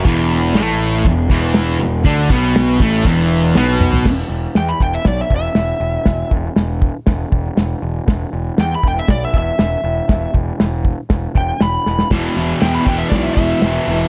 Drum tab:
CC |x---x---x---x---|x---x---x-------|x---------------|----------------|
HH |----------------|----------------|----o---o---o---|o---o---o---o---|
SD |----o-------o---|----o-------o---|o---o---o---o---|o---o---o---o---|
T2 |----------------|--------------o-|----------------|----------------|
FT |----------------|---------------o|----------------|----------------|
BD |o-------o-o-----|o-o---o-o-------|o-----o-o-o-----|o-o---o-o-o-----|

CC |----------------|----------------|----------------|
HH |o---o---o---o---|o---o---o---o---|o---o---o---o---|
SD |o---o---o---o---|o---o---o---o-oo|o---o---o---o---|
T2 |----------------|----------------|----------------|
FT |----------------|----------------|----------------|
BD |o-----o-o-o-----|o-o---o-o-o-----|o-----o-o-o-----|